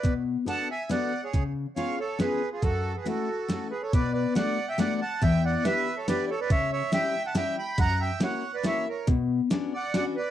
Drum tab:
HH |x-x-x-|x-x-x-|x-x-x-|x-x-x-|
SD |----o-|----o-|----o-|--o-o-|
BD |o-----|o-----|o-----|o-----|

HH |x-x-x-|x-x-x-|x-x-x-|x-x-x-|
SD |--o-o-|--o-o-|--o-o-|--o-o-|
BD |o-----|o-----|o-----|o-----|